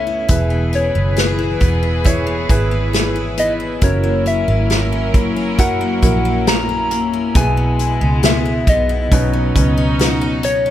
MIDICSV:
0, 0, Header, 1, 7, 480
1, 0, Start_track
1, 0, Key_signature, 4, "major"
1, 0, Tempo, 882353
1, 159, Time_signature, 4, 2, 24, 8
1, 5824, End_track
2, 0, Start_track
2, 0, Title_t, "Soft synth lead"
2, 0, Program_c, 0, 80
2, 0, Note_on_c, 0, 76, 89
2, 409, Note_on_c, 0, 73, 78
2, 417, Note_off_c, 0, 76, 0
2, 652, Note_on_c, 0, 71, 72
2, 660, Note_off_c, 0, 73, 0
2, 1366, Note_off_c, 0, 71, 0
2, 1847, Note_on_c, 0, 75, 84
2, 1923, Note_off_c, 0, 75, 0
2, 2089, Note_on_c, 0, 73, 94
2, 2308, Note_off_c, 0, 73, 0
2, 2325, Note_on_c, 0, 76, 89
2, 2781, Note_off_c, 0, 76, 0
2, 3045, Note_on_c, 0, 78, 98
2, 3525, Note_on_c, 0, 82, 105
2, 3533, Note_off_c, 0, 78, 0
2, 4002, Note_off_c, 0, 82, 0
2, 4008, Note_on_c, 0, 80, 106
2, 4491, Note_on_c, 0, 76, 89
2, 4499, Note_off_c, 0, 80, 0
2, 4728, Note_on_c, 0, 75, 88
2, 4736, Note_off_c, 0, 76, 0
2, 5444, Note_off_c, 0, 75, 0
2, 5683, Note_on_c, 0, 73, 91
2, 5824, Note_off_c, 0, 73, 0
2, 5824, End_track
3, 0, Start_track
3, 0, Title_t, "Grand piano"
3, 0, Program_c, 1, 0
3, 0, Control_c, 1, 64, 127
3, 0, Note_on_c, 1, 61, 64
3, 0, Note_on_c, 1, 69, 52
3, 0, Note_on_c, 1, 73, 62
3, 123, Note_off_c, 1, 61, 0
3, 125, Note_off_c, 1, 69, 0
3, 126, Note_off_c, 1, 73, 0
3, 155, Note_on_c, 1, 64, 64
3, 159, Note_on_c, 1, 47, 50
3, 159, Note_on_c, 1, 68, 57
3, 163, Note_on_c, 1, 71, 69
3, 166, Control_c, 1, 64, 0
3, 253, Control_c, 1, 64, 127
3, 858, Note_off_c, 1, 47, 0
3, 1070, Note_off_c, 1, 64, 0
3, 1071, Note_off_c, 1, 68, 0
3, 1073, Note_off_c, 1, 71, 0
3, 1116, Note_on_c, 1, 64, 70
3, 1120, Note_on_c, 1, 68, 65
3, 1122, Note_on_c, 1, 73, 88
3, 1346, Note_off_c, 1, 64, 0
3, 1348, Note_off_c, 1, 68, 0
3, 1349, Note_off_c, 1, 73, 0
3, 1356, Note_on_c, 1, 64, 72
3, 1359, Note_on_c, 1, 68, 71
3, 1361, Note_on_c, 1, 71, 80
3, 2042, Note_off_c, 1, 64, 0
3, 2043, Note_off_c, 1, 68, 0
3, 2044, Note_off_c, 1, 71, 0
3, 2076, Note_on_c, 1, 64, 62
3, 2079, Note_on_c, 1, 49, 55
3, 2079, Note_on_c, 1, 66, 55
3, 2081, Note_on_c, 1, 70, 75
3, 2087, Control_c, 1, 64, 0
3, 2193, Control_c, 1, 64, 127
3, 2778, Note_off_c, 1, 49, 0
3, 2990, Note_off_c, 1, 64, 0
3, 2991, Note_off_c, 1, 66, 0
3, 2992, Note_off_c, 1, 70, 0
3, 3037, Note_on_c, 1, 64, 82
3, 3040, Note_on_c, 1, 66, 68
3, 3043, Note_on_c, 1, 70, 86
3, 3267, Note_off_c, 1, 64, 0
3, 3268, Note_off_c, 1, 66, 0
3, 3269, Note_off_c, 1, 70, 0
3, 3276, Note_on_c, 1, 64, 64
3, 3279, Note_on_c, 1, 66, 58
3, 3282, Note_on_c, 1, 70, 69
3, 3962, Note_off_c, 1, 64, 0
3, 3963, Note_off_c, 1, 66, 0
3, 3965, Note_off_c, 1, 70, 0
3, 3998, Note_on_c, 1, 64, 63
3, 4000, Note_on_c, 1, 59, 53
3, 4001, Note_on_c, 1, 47, 59
3, 4001, Note_on_c, 1, 68, 62
3, 4004, Note_on_c, 1, 71, 67
3, 4007, Control_c, 1, 64, 0
3, 4096, Control_c, 1, 64, 127
3, 4698, Note_off_c, 1, 47, 0
3, 4698, Note_off_c, 1, 59, 0
3, 4911, Note_off_c, 1, 64, 0
3, 4912, Note_off_c, 1, 68, 0
3, 4914, Note_off_c, 1, 71, 0
3, 4959, Note_on_c, 1, 61, 80
3, 4961, Note_on_c, 1, 47, 65
3, 4961, Note_on_c, 1, 54, 62
3, 4961, Note_on_c, 1, 63, 75
3, 4965, Note_on_c, 1, 71, 81
3, 4967, Control_c, 1, 64, 0
3, 5059, Control_c, 1, 64, 127
3, 5187, Note_off_c, 1, 61, 0
3, 5188, Note_off_c, 1, 63, 0
3, 5190, Note_off_c, 1, 71, 0
3, 5198, Note_on_c, 1, 61, 67
3, 5203, Note_on_c, 1, 63, 53
3, 5205, Note_on_c, 1, 71, 65
3, 5658, Note_off_c, 1, 47, 0
3, 5659, Note_off_c, 1, 54, 0
3, 5824, Note_off_c, 1, 61, 0
3, 5824, Note_off_c, 1, 63, 0
3, 5824, Note_off_c, 1, 71, 0
3, 5824, End_track
4, 0, Start_track
4, 0, Title_t, "Steel-string acoustic guitar"
4, 0, Program_c, 2, 25
4, 0, Note_on_c, 2, 57, 69
4, 0, Note_on_c, 2, 61, 64
4, 0, Note_on_c, 2, 71, 58
4, 37, Note_on_c, 2, 64, 45
4, 153, Note_off_c, 2, 57, 0
4, 155, Note_on_c, 2, 52, 70
4, 207, Note_off_c, 2, 61, 0
4, 273, Note_on_c, 2, 59, 48
4, 394, Note_off_c, 2, 64, 0
4, 396, Note_on_c, 2, 64, 61
4, 511, Note_off_c, 2, 59, 0
4, 517, Note_on_c, 2, 59, 49
4, 632, Note_off_c, 2, 71, 0
4, 634, Note_on_c, 2, 68, 65
4, 751, Note_off_c, 2, 64, 0
4, 754, Note_on_c, 2, 64, 48
4, 867, Note_off_c, 2, 59, 0
4, 873, Note_on_c, 2, 59, 53
4, 991, Note_off_c, 2, 64, 0
4, 994, Note_on_c, 2, 64, 52
4, 1110, Note_off_c, 2, 52, 0
4, 1112, Note_on_c, 2, 52, 70
4, 1226, Note_off_c, 2, 59, 0
4, 1233, Note_on_c, 2, 59, 62
4, 1355, Note_off_c, 2, 64, 0
4, 1357, Note_on_c, 2, 64, 56
4, 1469, Note_off_c, 2, 59, 0
4, 1476, Note_on_c, 2, 59, 55
4, 1589, Note_off_c, 2, 68, 0
4, 1596, Note_on_c, 2, 68, 55
4, 1715, Note_off_c, 2, 64, 0
4, 1717, Note_on_c, 2, 64, 52
4, 1830, Note_off_c, 2, 59, 0
4, 1837, Note_on_c, 2, 59, 66
4, 1955, Note_off_c, 2, 64, 0
4, 1957, Note_on_c, 2, 64, 47
4, 2075, Note_on_c, 2, 42, 66
4, 2126, Note_off_c, 2, 59, 0
4, 2126, Note_off_c, 2, 68, 0
4, 2195, Note_on_c, 2, 58, 48
4, 2211, Note_off_c, 2, 52, 0
4, 2211, Note_off_c, 2, 64, 0
4, 2316, Note_on_c, 2, 61, 53
4, 2430, Note_off_c, 2, 58, 0
4, 2436, Note_on_c, 2, 58, 54
4, 2556, Note_on_c, 2, 70, 58
4, 2672, Note_off_c, 2, 61, 0
4, 2679, Note_on_c, 2, 61, 50
4, 2791, Note_off_c, 2, 58, 0
4, 2797, Note_on_c, 2, 58, 58
4, 2912, Note_off_c, 2, 61, 0
4, 2918, Note_on_c, 2, 61, 52
4, 3032, Note_off_c, 2, 42, 0
4, 3039, Note_on_c, 2, 42, 74
4, 3153, Note_off_c, 2, 58, 0
4, 3159, Note_on_c, 2, 58, 65
4, 3270, Note_off_c, 2, 61, 0
4, 3277, Note_on_c, 2, 61, 55
4, 3394, Note_off_c, 2, 58, 0
4, 3400, Note_on_c, 2, 58, 60
4, 3514, Note_off_c, 2, 70, 0
4, 3521, Note_on_c, 2, 70, 57
4, 3632, Note_off_c, 2, 61, 0
4, 3639, Note_on_c, 2, 61, 51
4, 3754, Note_off_c, 2, 58, 0
4, 3761, Note_on_c, 2, 58, 67
4, 3875, Note_off_c, 2, 61, 0
4, 3881, Note_on_c, 2, 61, 53
4, 3999, Note_off_c, 2, 42, 0
4, 3999, Note_on_c, 2, 47, 78
4, 4048, Note_off_c, 2, 58, 0
4, 4048, Note_off_c, 2, 61, 0
4, 4048, Note_off_c, 2, 70, 0
4, 4119, Note_on_c, 2, 59, 50
4, 4239, Note_on_c, 2, 64, 57
4, 4357, Note_off_c, 2, 59, 0
4, 4359, Note_on_c, 2, 59, 54
4, 4477, Note_on_c, 2, 68, 66
4, 4593, Note_off_c, 2, 64, 0
4, 4599, Note_on_c, 2, 64, 51
4, 4717, Note_off_c, 2, 59, 0
4, 4719, Note_on_c, 2, 59, 63
4, 4831, Note_off_c, 2, 64, 0
4, 4837, Note_on_c, 2, 64, 57
4, 4953, Note_off_c, 2, 47, 0
4, 4959, Note_on_c, 2, 47, 71
4, 5006, Note_off_c, 2, 64, 0
4, 5006, Note_off_c, 2, 68, 0
4, 5075, Note_off_c, 2, 59, 0
4, 5078, Note_on_c, 2, 61, 61
4, 5198, Note_on_c, 2, 63, 58
4, 5311, Note_off_c, 2, 61, 0
4, 5317, Note_on_c, 2, 61, 60
4, 5437, Note_on_c, 2, 66, 64
4, 5550, Note_off_c, 2, 63, 0
4, 5556, Note_on_c, 2, 63, 60
4, 5669, Note_off_c, 2, 61, 0
4, 5675, Note_on_c, 2, 61, 70
4, 5791, Note_off_c, 2, 63, 0
4, 5798, Note_on_c, 2, 63, 55
4, 5824, Note_off_c, 2, 47, 0
4, 5824, Note_off_c, 2, 61, 0
4, 5824, Note_off_c, 2, 63, 0
4, 5824, Note_off_c, 2, 66, 0
4, 5824, End_track
5, 0, Start_track
5, 0, Title_t, "String section"
5, 0, Program_c, 3, 48
5, 0, Note_on_c, 3, 57, 60
5, 0, Note_on_c, 3, 59, 59
5, 0, Note_on_c, 3, 61, 62
5, 139, Note_off_c, 3, 57, 0
5, 139, Note_off_c, 3, 59, 0
5, 139, Note_off_c, 3, 61, 0
5, 159, Note_on_c, 3, 68, 66
5, 161, Note_on_c, 3, 52, 67
5, 161, Note_on_c, 3, 71, 70
5, 162, Note_on_c, 3, 64, 60
5, 2060, Note_off_c, 3, 68, 0
5, 2061, Note_off_c, 3, 52, 0
5, 2061, Note_off_c, 3, 71, 0
5, 2075, Note_on_c, 3, 61, 60
5, 2077, Note_on_c, 3, 70, 69
5, 2078, Note_on_c, 3, 54, 70
5, 3978, Note_off_c, 3, 61, 0
5, 3979, Note_off_c, 3, 54, 0
5, 3979, Note_off_c, 3, 70, 0
5, 4001, Note_on_c, 3, 56, 70
5, 4001, Note_on_c, 3, 59, 60
5, 4939, Note_off_c, 3, 64, 0
5, 4951, Note_off_c, 3, 56, 0
5, 4957, Note_on_c, 3, 61, 63
5, 4959, Note_on_c, 3, 63, 84
5, 5824, Note_off_c, 3, 59, 0
5, 5824, Note_off_c, 3, 61, 0
5, 5824, Note_off_c, 3, 63, 0
5, 5824, End_track
6, 0, Start_track
6, 0, Title_t, "Fingered electric bass"
6, 0, Program_c, 4, 33
6, 0, Note_on_c, 4, 37, 77
6, 137, Note_off_c, 4, 37, 0
6, 159, Note_on_c, 4, 28, 92
6, 497, Note_off_c, 4, 28, 0
6, 519, Note_on_c, 4, 30, 72
6, 857, Note_off_c, 4, 30, 0
6, 874, Note_on_c, 4, 28, 80
6, 1335, Note_off_c, 4, 28, 0
6, 1356, Note_on_c, 4, 32, 85
6, 2056, Note_off_c, 4, 32, 0
6, 2078, Note_on_c, 4, 30, 94
6, 2417, Note_off_c, 4, 30, 0
6, 2437, Note_on_c, 4, 32, 77
6, 2797, Note_off_c, 4, 32, 0
6, 2797, Note_on_c, 4, 30, 89
6, 3256, Note_off_c, 4, 30, 0
6, 3276, Note_on_c, 4, 34, 87
6, 3976, Note_off_c, 4, 34, 0
6, 3999, Note_on_c, 4, 35, 95
6, 4337, Note_off_c, 4, 35, 0
6, 4359, Note_on_c, 4, 37, 70
6, 4698, Note_off_c, 4, 37, 0
6, 4717, Note_on_c, 4, 35, 88
6, 4941, Note_off_c, 4, 35, 0
6, 4959, Note_on_c, 4, 35, 85
6, 5182, Note_off_c, 4, 35, 0
6, 5197, Note_on_c, 4, 37, 86
6, 5824, Note_off_c, 4, 37, 0
6, 5824, End_track
7, 0, Start_track
7, 0, Title_t, "Drums"
7, 158, Note_on_c, 9, 42, 84
7, 159, Note_on_c, 9, 36, 107
7, 213, Note_off_c, 9, 36, 0
7, 213, Note_off_c, 9, 42, 0
7, 401, Note_on_c, 9, 42, 47
7, 455, Note_off_c, 9, 42, 0
7, 638, Note_on_c, 9, 42, 72
7, 641, Note_on_c, 9, 38, 86
7, 693, Note_off_c, 9, 42, 0
7, 695, Note_off_c, 9, 38, 0
7, 876, Note_on_c, 9, 36, 77
7, 878, Note_on_c, 9, 42, 56
7, 931, Note_off_c, 9, 36, 0
7, 932, Note_off_c, 9, 42, 0
7, 1118, Note_on_c, 9, 36, 85
7, 1120, Note_on_c, 9, 42, 89
7, 1172, Note_off_c, 9, 36, 0
7, 1174, Note_off_c, 9, 42, 0
7, 1357, Note_on_c, 9, 36, 87
7, 1358, Note_on_c, 9, 42, 66
7, 1411, Note_off_c, 9, 36, 0
7, 1413, Note_off_c, 9, 42, 0
7, 1601, Note_on_c, 9, 42, 69
7, 1602, Note_on_c, 9, 38, 95
7, 1655, Note_off_c, 9, 42, 0
7, 1656, Note_off_c, 9, 38, 0
7, 1836, Note_on_c, 9, 42, 69
7, 1890, Note_off_c, 9, 42, 0
7, 2076, Note_on_c, 9, 42, 95
7, 2078, Note_on_c, 9, 36, 96
7, 2131, Note_off_c, 9, 42, 0
7, 2132, Note_off_c, 9, 36, 0
7, 2319, Note_on_c, 9, 42, 49
7, 2373, Note_off_c, 9, 42, 0
7, 2558, Note_on_c, 9, 42, 71
7, 2561, Note_on_c, 9, 38, 89
7, 2613, Note_off_c, 9, 42, 0
7, 2616, Note_off_c, 9, 38, 0
7, 2797, Note_on_c, 9, 36, 76
7, 2799, Note_on_c, 9, 42, 52
7, 2851, Note_off_c, 9, 36, 0
7, 2854, Note_off_c, 9, 42, 0
7, 3039, Note_on_c, 9, 36, 79
7, 3041, Note_on_c, 9, 42, 89
7, 3094, Note_off_c, 9, 36, 0
7, 3096, Note_off_c, 9, 42, 0
7, 3278, Note_on_c, 9, 36, 84
7, 3279, Note_on_c, 9, 42, 70
7, 3332, Note_off_c, 9, 36, 0
7, 3333, Note_off_c, 9, 42, 0
7, 3521, Note_on_c, 9, 42, 81
7, 3522, Note_on_c, 9, 38, 106
7, 3575, Note_off_c, 9, 42, 0
7, 3577, Note_off_c, 9, 38, 0
7, 3758, Note_on_c, 9, 42, 68
7, 3813, Note_off_c, 9, 42, 0
7, 3998, Note_on_c, 9, 42, 87
7, 4000, Note_on_c, 9, 36, 113
7, 4052, Note_off_c, 9, 42, 0
7, 4054, Note_off_c, 9, 36, 0
7, 4241, Note_on_c, 9, 42, 54
7, 4296, Note_off_c, 9, 42, 0
7, 4479, Note_on_c, 9, 42, 78
7, 4482, Note_on_c, 9, 38, 107
7, 4533, Note_off_c, 9, 42, 0
7, 4536, Note_off_c, 9, 38, 0
7, 4717, Note_on_c, 9, 36, 81
7, 4717, Note_on_c, 9, 42, 57
7, 4771, Note_off_c, 9, 42, 0
7, 4772, Note_off_c, 9, 36, 0
7, 4959, Note_on_c, 9, 36, 95
7, 4960, Note_on_c, 9, 42, 93
7, 5013, Note_off_c, 9, 36, 0
7, 5015, Note_off_c, 9, 42, 0
7, 5199, Note_on_c, 9, 36, 79
7, 5200, Note_on_c, 9, 42, 71
7, 5253, Note_off_c, 9, 36, 0
7, 5255, Note_off_c, 9, 42, 0
7, 5443, Note_on_c, 9, 42, 80
7, 5444, Note_on_c, 9, 38, 108
7, 5497, Note_off_c, 9, 42, 0
7, 5499, Note_off_c, 9, 38, 0
7, 5679, Note_on_c, 9, 42, 65
7, 5734, Note_off_c, 9, 42, 0
7, 5824, End_track
0, 0, End_of_file